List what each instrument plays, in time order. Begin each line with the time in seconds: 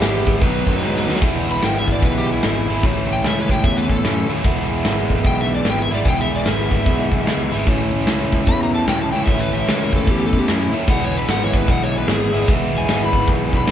Already playing: overdriven electric guitar E3 G#3 B3 E4
0.00 picked electric bass G#1, electric slide guitar G4, snare, open hi-hat
0.26 picked electric bass G#1, kick
0.41 picked electric bass B1, overdriven electric guitar B2 D#3 F#3 B3 D#4, electric slide guitar B4, kick, open hi-hat
0.67 picked electric bass F#2, kick
0.82 picked electric bass G#2, snare
0.96 snare
1.07 picked electric bass D#2, snare
1.15 snare
1.21 picked electric bass E1, overdriven electric guitar E3 G#3 B3 E4, kick, crash
1.48 picked electric bass E1, electric slide guitar B5
1.62 picked electric bass G#1, electric slide guitar G5, snare, open hi-hat
1.79 electric slide guitar E5
1.88 picked electric bass G#1, kick
1.92 electric slide guitar D5
2.02 picked electric bass B1, electric slide guitar B4, kick, open hi-hat
2.18 electric slide guitar G4
2.33 electric slide guitar E4
2.42 picked electric bass G#1, electric slide guitar E4, snare, open hi-hat
2.68 picked electric bass G#1, overdriven electric guitar E3 G#3 B3 E4
2.83 picked electric bass A1, overdriven electric guitar A2 E3 A3 C#4 E4, kick, open hi-hat
3.09 picked electric bass A1
3.13 electric slide guitar G5
3.24 picked electric bass C#2, electric slide guitar E5, snare, open hi-hat
3.40 electric slide guitar B4
3.49 picked electric bass C#2, electric slide guitar G5, kick
3.64 picked electric bass E2, electric slide guitar E5, kick, open hi-hat
3.77 electric slide guitar B4
3.89 picked electric bass E2, electric slide guitar A4, kick
4.04 picked electric bass F#2, snare, open hi-hat
4.29 picked electric bass D#2, overdriven electric guitar A2 E3 A3 C#4 E4
4.42 picked electric bass E1, overdriven electric guitar E3 G#3 B3 E4, kick, open hi-hat
4.69 picked electric bass E1
4.84 picked electric bass G#1, snare, open hi-hat
5.10 picked electric bass G#1, kick
5.24 picked electric bass B1, electric slide guitar G5, kick, open hi-hat
5.41 electric slide guitar E5
5.56 electric slide guitar D5
5.65 picked electric bass G#1, snare, open hi-hat
5.70 electric slide guitar G5
5.82 electric slide guitar E5
5.91 picked electric bass G#1, overdriven electric guitar E3 G#3 B3 E4
5.95 electric slide guitar D5
6.05 picked electric bass E1, overdriven electric guitar E3 G#3 B3 E4, electric slide guitar G5, kick, open hi-hat
6.21 electric slide guitar E5
6.32 picked electric bass E1
6.36 electric slide guitar D5
6.45 picked electric bass G#1, electric slide guitar E5, snare, open hi-hat
6.71 picked electric bass G#1, kick
6.86 picked electric bass B1, kick, open hi-hat
7.11 picked electric bass B1, kick
7.27 picked electric bass C#2, snare, open hi-hat
7.51 picked electric bass G#1, overdriven electric guitar E3 G#3 B3 E4
7.66 picked electric bass A1, overdriven electric guitar A2 E3 A3 C#4 E4, kick, open hi-hat
7.93 picked electric bass A1
8.07 picked electric bass C#2, snare, open hi-hat
8.32 picked electric bass C#2, kick
8.46 picked electric bass E2, electric slide guitar B5, kick, open hi-hat
8.63 electric slide guitar A#5
8.75 electric slide guitar A5
8.87 picked electric bass C#2, electric slide guitar G5, snare, open hi-hat
9.02 electric slide guitar A5
9.12 picked electric bass C#2, overdriven electric guitar A2 E3 A3 C#4 E4, electric slide guitar G5
9.25 picked electric bass A1, overdriven electric guitar A2 E3 A3 C#4 E4, electric slide guitar E5, kick, open hi-hat
9.39 electric slide guitar B4
9.52 picked electric bass A1, electric slide guitar E5
9.67 picked electric bass C#2, electric slide guitar B4, snare, open hi-hat
9.82 electric slide guitar A#4
9.92 picked electric bass C#2, electric slide guitar A4, kick
10.07 picked electric bass E2, electric slide guitar G4, kick, open hi-hat
10.26 electric slide guitar A4
10.33 picked electric bass E2, kick
10.39 electric slide guitar G4
10.47 picked electric bass F#2, electric slide guitar E4, snare, open hi-hat
10.72 picked electric bass D#2, overdriven electric guitar A2 E3 A3 C#4 E4
10.87 picked electric bass E1, overdriven electric guitar E3 G#3 B3 E4, electric slide guitar F#5, kick, open hi-hat
11.05 electric slide guitar C#5
11.13 picked electric bass E1
11.17 electric slide guitar B4
11.27 picked electric bass G#1, electric slide guitar F#5, snare, open hi-hat
11.44 electric slide guitar C#5
11.53 picked electric bass G#1, kick
11.57 electric slide guitar B4
11.68 picked electric bass B1, electric slide guitar F#5, kick, open hi-hat
11.83 electric slide guitar C#5
11.98 electric slide guitar B4
12.07 picked electric bass G#1, snare, open hi-hat
12.13 electric slide guitar G#4
12.33 picked electric bass G#1, overdriven electric guitar E3 G#3 B3 E4
12.48 picked electric bass E1, overdriven electric guitar E3 G#3 B3 E4, kick, open hi-hat
12.72 picked electric bass E1
12.78 electric slide guitar G#5
12.87 picked electric bass G#1, snare, open hi-hat
13.05 electric slide guitar B5
13.13 picked electric bass G#1, kick
13.28 picked electric bass B1, kick, open hi-hat
13.53 picked electric bass B1, kick
13.57 electric slide guitar B5
13.67 picked electric bass C#2, snare, open hi-hat